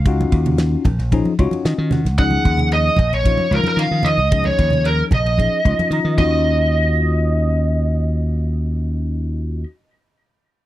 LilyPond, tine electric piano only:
\new Staff \with { instrumentName = "Tine electric piano" } { \time 4/4 \key ees \minor \tempo 4 = 113 << { r2 r8 des''8 ees''8 ges''8 | r1 | r2. bes''8 r8 | r1 |
r1 | } \\ { <des' ees' f' ges'>4. r8 <f des' ees' aes'>8 <des' ees' f' ges'>4 r8 | <f des' ees' aes'>4. r8 <f des' ees' f'>8 <f des' ees' f'>4 r8 | <f des' ees' aes'>4. r8 <f des' ees' aes'>8 <f des' ees' f'>4 <des' ees' f' ges'>8~ | <des' ees' f' ges'>1~ |
<des' ees' f' ges'>1 | } >> }